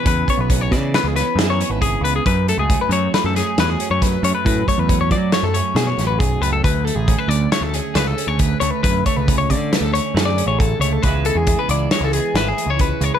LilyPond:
<<
  \new Staff \with { instrumentName = "Clean electric guitar" } { \time 5/4 \key d \lydian \tempo 4 = 137 b'8 cis''16 b'8 cis''16 d''8 b'16 gis'16 b'8 gis'16 cis''8 b'16 gis'8 b'16 gis'16 | b'8 a'16 gis'8 b'16 cis''8 b'16 a'16 gis'8 b'16 gis'8 cis''16 b'8 cis''16 b'16 | b'8 cis''16 b'8 cis''16 d''8 cis''16 a'16 cis''8 gis'16 cis''8 b'16 gis'8 b'16 a'16 | b'8 a'16 gis'8 b'16 d''8 cis''16 a'16 gis'8 b'16 a'8 cis''16 b'8 cis''16 b'16 |
b'8 cis''16 b'8 cis''16 d''8 b'16 a'16 cis''8 a'16 d''8 cis''16 a'8 cis''16 a'16 | b'8 a'16 gis'8 b'16 d''8 cis''16 a'16 gis'8 b'16 gis'8 cis''16 b'8 cis''16 b'16 | }
  \new Staff \with { instrumentName = "Clean electric guitar" } { \time 5/4 \key d \lydian << { r8 b8 cis'4 b8 cis'8 e'8 cis'4 b8 | r8 a8 cis'4 a8 cis'8 fis'8 cis'4 a8 | r8 a8 cis'4 a8 cis'8 fis'8 cis'4 a8 | r8 a8 cis'4 a8 cis'8 gis'8 cis'4 a8 |
r8 a8 cis'4 a8 cis'8 gis'8 cis'4 a8 | <e gis b e'>8 gis8 a16 b8. gis8 b8 e'8 a16 b8. gis8 | } \\ { cis4. e2~ e8 cis4 | fis,4. fis2~ fis8 fis,4 | fis,4. fis2~ fis8 fis,4 | d,1 d,4 |
d,4. d2~ d8 d,4 | cis4. e2~ e8 cis4 | } >> }
  \new Staff \with { instrumentName = "Picked electric bass" } { \clef bass \time 5/4 \key d \lydian e,8 r16 b,,8. cis8. cis,8 r16 fis,8. gis,,8. cis,8 | fis,8. cis,8 r16 fis,8 r16 fis,8 r16 e,8 r16 fis,8. fis,16 r16 | a,8 r16 e,8. fis8. fis,8 r16 b,8 a,,8 b,,8 cis,8 | d,8. a,,8 r16 d,8 r16 d,8 r16 cis,8 r16 d,8. d,16 r16 |
fis,8 r16 cis,8. d8. d,8 r16 fis,8. a,,8. cis,8 | cis,8. e,8 r16 cis,8 r16 cis,8 r16 gis,,8 r16 cis,8. cis,16 r16 | }
  \new DrumStaff \with { instrumentName = "Drums" } \drummode { \time 5/4 <hh bd>8 <hh bd>8 <hh bd>8 <hh bd sn>8 <hh sn>8 <hh sn>8 <hh sn>8 hh8 <hh bd>8 hh8 | <hh bd>8 hh8 <hh bd>8 hh8 <hh sn>8 <hh sn>8 <hh sn>8 hh8 <hh bd sn>8 hh8 | <hh bd>8 <hh bd>8 <hh bd>8 <hh bd>8 <hh sn>8 hh8 <hh sn>8 <hh sn>8 <hh bd>8 hh8 | <hh bd>8 hh8 <hh bd>8 hh8 <hh sn>8 hh8 <hh sn>8 hh8 <hh bd>8 hh8 |
<hh bd>8 <hh bd>8 <hh bd>8 <hh bd>8 <hh sn>8 hh8 <hh sn>8 hh8 <hh bd>8 hh8 | <hh bd>8 hh8 <hh bd>8 hh8 <hh sn>8 hh8 <hh sn>8 hh8 <hh bd>8 hh8 | }
>>